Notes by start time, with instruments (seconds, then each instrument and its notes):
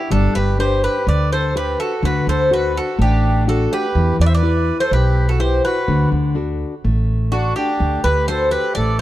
0.10 upright bass G1, nylon-string guitar G3, accordion D4, bouzouki A4
0.35 upright bass G1, accordion G4, bouzouki B4
0.59 nylon-string guitar D4 G4 B4, accordion G4, bouzouki C5
0.83 accordion G4, bouzouki B4
1.07 upright bass D2, nylon-string guitar D3, accordion B4, bouzouki D5
1.32 accordion A4, bouzouki C5
1.55 nylon-string guitar D4 G4 B4, accordion G4, bouzouki B4
1.80 accordion F#4, bouzouki A4
2.03 upright bass D2, nylon-string guitar D3, accordion F#4, bouzouki B4
2.27 upright bass D2, accordion A4, bouzouki C5
2.51 nylon-string guitar D4 F#4 A4, accordion F#4, bouzouki B4
2.76 accordion F#4, bouzouki A4
2.98 upright bass A1, nylon-string guitar A3, accordion D4, bouzouki G4
3.47 nylon-string guitar D4 F#4 A4, accordion F#4, bouzouki A4
3.72 accordion G4, bouzouki B4
3.95 upright bass E2, nylon-string guitar E3
4.19 upright bass E2, accordion B4, bouzouki D5
4.26 accordion C5, bouzouki E5
4.35 accordion B4, bouzouki D5
4.43 nylon-string guitar E4 G4 B4
4.80 accordion A4, bouzouki C5
4.91 upright bass B1, nylon-string guitar B2, accordion G4, bouzouki B4
5.29 accordion F#4, bouzouki A4
5.40 nylon-string guitar E4 G4 B4, accordion G4, bouzouki C5
5.65 accordion F#4, bouzouki B4
5.88 upright bass D2, nylon-string guitar D3
6.12 upright bass D2
6.35 nylon-string guitar D4 F#4 A4
6.84 upright bass A1, nylon-string guitar A3
7.32 nylon-string guitar D4 F#4 A4, accordion D4, bouzouki F#4
7.56 accordion D4, bouzouki G4
7.80 upright bass D2, nylon-string guitar A3
8.04 upright bass D2, accordion G4, bouzouki B4
8.28 nylon-string guitar D4 F#4 A4, accordion A4, bouzouki C5
8.51 accordion G4, bouzouki B4
8.75 upright bass A1, nylon-string guitar A3, accordion A4, bouzouki D5